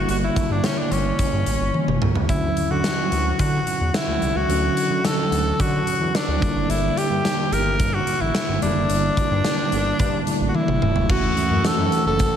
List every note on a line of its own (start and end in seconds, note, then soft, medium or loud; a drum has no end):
0.00 1.97 D3 medium
0.00 1.97 G3 medium
0.00 1.98 A#3 medium
0.00 1.98 E4 medium
0.09 0.30 G1 loud
0.09 0.16 F#4 medium
0.09 closed hi-hat medium
0.24 0.53 E4 medium
0.36 kick medium
0.36 closed hi-hat medium
0.50 0.60 G2 loud
0.50 0.67 D4 medium
0.64 0.80 C#4 medium
0.64 snare medium
0.64 closed hi-hat medium
0.79 0.94 D4 medium
0.91 1.12 G1 medium
0.91 2.02 C#4 medium
0.91 closed hi-hat medium
1.19 kick medium
1.19 closed hi-hat medium
1.33 1.43 G2 medium
1.46 1.57 A1 medium
1.46 closed hi-hat medium
1.61 1.71 G1 medium
1.74 high tom medium
1.88 1.98 F#1 medium
1.88 mid tom medium
2.01 2.12 C2 medium
2.01 mid tom medium
2.15 2.26 C#2 medium
2.15 floor tom medium
2.28 2.50 D2 loud
2.28 4.45 D3 medium
2.28 4.45 F#3 medium
2.28 4.45 C#4 medium
2.28 2.72 E4 medium
2.28 4.46 E4 medium
2.28 kick medium
2.28 closed hi-hat medium
2.57 closed hi-hat medium
2.71 2.81 D3 medium
2.71 3.40 F#4 medium
2.84 snare medium
2.84 closed hi-hat medium
3.12 3.32 D2 medium
3.12 closed hi-hat medium
3.39 3.60 D3 loud
3.39 3.96 F#4 medium
3.39 kick medium
3.39 closed hi-hat medium
3.67 closed hi-hat medium
3.81 3.91 E2 medium
3.94 4.38 E4 medium
3.94 snare loud
3.94 closed hi-hat medium
4.07 4.18 D2 loud
4.22 4.32 C2 loud
4.22 closed hi-hat medium
4.35 4.46 C#2 medium
4.35 5.07 F#4 medium
4.48 4.70 D2 loud
4.48 6.37 D3 medium
4.48 6.38 F#3 medium
4.48 6.38 C#4 medium
4.48 6.39 F#4 medium
4.48 closed hi-hat medium
4.77 closed hi-hat medium
4.90 5.01 D3 loud
5.05 5.62 A4 loud
5.05 snare medium
5.05 closed hi-hat medium
5.32 5.52 D2 medium
5.32 closed hi-hat medium
5.60 5.80 D3 loud
5.60 6.17 F#4 medium
5.60 kick medium
5.60 closed hi-hat medium
5.87 closed hi-hat medium
6.00 6.11 E2 medium
6.15 6.72 D4 medium
6.15 snare loud
6.15 closed hi-hat medium
6.28 6.38 D2 medium
6.41 6.52 G1 medium
6.41 8.57 D3 medium
6.41 8.58 G3 medium
6.41 8.58 A#3 medium
6.41 8.59 E4 medium
6.41 kick loud
6.41 closed hi-hat medium
6.56 6.66 F#1 medium
6.69 6.90 G1 loud
6.69 6.99 E4 medium
6.69 closed hi-hat medium
6.97 7.54 G4 loud
6.97 closed hi-hat medium
7.10 7.21 G2 medium
7.25 snare medium
7.25 closed hi-hat medium
7.52 7.81 G1 medium
7.52 7.96 A#4 medium
7.52 closed hi-hat medium
7.80 8.00 G2 medium
7.80 kick medium
7.80 closed hi-hat medium
7.94 8.23 F#4 medium
8.07 closed hi-hat medium
8.20 8.31 A1 medium
8.20 8.62 E4 medium
8.35 snare loud
8.35 closed hi-hat medium
8.48 8.59 G1 medium
8.61 8.73 F1 medium
8.61 10.23 D3 medium
8.61 10.24 G3 medium
8.61 10.24 A#3 medium
8.61 10.31 D4 medium
8.61 10.25 E4 medium
8.61 closed hi-hat medium
8.76 8.86 F#1 medium
8.90 9.10 G1 loud
8.90 closed hi-hat medium
9.17 kick medium
9.17 closed hi-hat medium
9.31 9.41 G2 medium
9.44 snare medium
9.44 closed hi-hat medium
9.72 9.93 G1 loud
9.72 closed hi-hat medium
9.99 10.20 G2 loud
9.99 kick medium
9.99 closed hi-hat medium
10.26 11.09 D3 soft
10.26 11.10 G3 soft
10.26 10.34 A3 soft
10.26 11.10 E4 medium
10.26 closed hi-hat medium
10.34 11.13 A#3 soft
10.41 10.51 A1 medium
10.48 10.57 F#4 medium
10.55 11.12 E4 medium
10.55 high tom medium
10.68 10.79 G1 loud
10.68 mid tom medium
10.82 10.92 E1 medium
10.82 mid tom medium
10.96 11.06 F1 medium
10.96 floor tom medium
11.09 11.30 F#1 loud
11.09 12.37 E3 medium
11.09 12.37 A3 medium
11.09 12.37 C#4 medium
11.09 11.68 F#4 loud
11.09 12.37 F#4 medium
11.09 12.37 A4 medium
11.09 12.37 F#5 medium
11.09 12.37 E6 medium
11.09 kick loud
11.09 crash medium
11.37 closed hi-hat medium
11.50 11.61 F#2 loud
11.64 11.70 F#2 soft
11.64 12.06 A4 loud
11.64 snare medium
11.64 closed hi-hat medium
11.78 11.89 F#2 loud
11.92 closed hi-hat medium
12.06 12.27 F#1 medium
12.06 12.37 A4 loud
12.19 kick medium
12.19 closed hi-hat medium